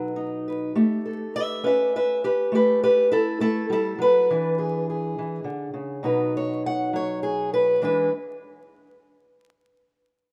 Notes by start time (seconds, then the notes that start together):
Already playing: B2 F#3 D#4 A4 B4
0.16 D#4
0.48 B4
0.75 A3 G4
1.05 A4
1.36 B4 E5
1.64 C#4 B4 E5
1.96 B4 E5
2.24 G4 B4
2.52 A3 G4 B4
2.83 G4 B4
3.12 E4 A4
3.40 A3 E4 A4
3.70 G3 E4 A4
3.98 F#3 B4
4.30 E3 D4
4.59 G#4
4.90 G#4
5.19 E3
5.44 D3
5.74 C#3
6.03 B2 F#3 D#4 F#4 B4
6.37 C#5
6.66 F#5
6.93 F#3 C#5
7.23 G#4
7.54 B4
7.81 E3 G#3 D4 E4 B4